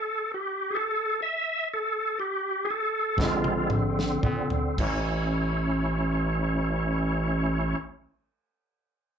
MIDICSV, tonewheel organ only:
0, 0, Header, 1, 2, 480
1, 0, Start_track
1, 0, Tempo, 914634
1, 894, Tempo, 970874
1, 1374, Tempo, 1022147
1, 1854, Tempo, 1086957
1, 2333, Time_signature, 12, 3, 24, 8
1, 2334, Tempo, 1121495
1, 4219, End_track
2, 0, Start_track
2, 0, Title_t, "Tonewheel organ"
2, 0, Program_c, 0, 16
2, 0, Note_on_c, 0, 69, 87
2, 166, Note_off_c, 0, 69, 0
2, 179, Note_on_c, 0, 67, 81
2, 370, Note_on_c, 0, 68, 77
2, 393, Note_on_c, 0, 69, 104
2, 400, Note_off_c, 0, 68, 0
2, 404, Note_off_c, 0, 67, 0
2, 634, Note_off_c, 0, 69, 0
2, 642, Note_on_c, 0, 76, 96
2, 884, Note_off_c, 0, 76, 0
2, 910, Note_on_c, 0, 69, 91
2, 1132, Note_off_c, 0, 69, 0
2, 1137, Note_on_c, 0, 67, 92
2, 1361, Note_on_c, 0, 68, 75
2, 1370, Note_off_c, 0, 67, 0
2, 1386, Note_off_c, 0, 68, 0
2, 1388, Note_on_c, 0, 69, 101
2, 1611, Note_off_c, 0, 69, 0
2, 1624, Note_on_c, 0, 50, 59
2, 1630, Note_on_c, 0, 56, 88
2, 1637, Note_on_c, 0, 60, 66
2, 1638, Note_on_c, 0, 65, 105
2, 1850, Note_off_c, 0, 56, 0
2, 1860, Note_off_c, 0, 65, 0
2, 2322, Note_off_c, 0, 50, 0
2, 2328, Note_off_c, 0, 60, 0
2, 2337, Note_on_c, 0, 57, 71
2, 2341, Note_on_c, 0, 64, 70
2, 2341, Note_on_c, 0, 73, 76
2, 2345, Note_on_c, 0, 61, 76
2, 3610, Note_off_c, 0, 57, 0
2, 3613, Note_off_c, 0, 73, 0
2, 3614, Note_off_c, 0, 64, 0
2, 3618, Note_off_c, 0, 61, 0
2, 4219, End_track
0, 0, End_of_file